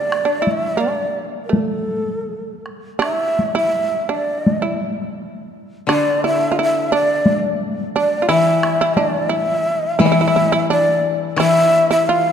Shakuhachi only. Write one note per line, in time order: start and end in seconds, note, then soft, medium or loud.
0.00 0.52 D5 medium
0.51 0.82 E5 medium
0.81 1.26 D5 medium
1.45 1.61 A#4 soft
1.59 2.69 A4 medium
3.03 3.53 E5 medium
3.58 4.16 E5 loud
4.14 4.84 D5 medium
5.90 6.21 D5 loud
6.26 6.56 E5 loud
6.63 6.92 E5 loud
6.94 7.57 D5 loud
8.00 8.29 D5 medium
8.29 8.96 E5 loud
8.94 9.30 D5 medium
9.29 9.99 E5 loud
10.02 10.66 E5 loud
10.72 11.18 D5 loud
11.41 11.88 E5 loud
11.91 12.09 E5 loud
12.07 12.32 F5 loud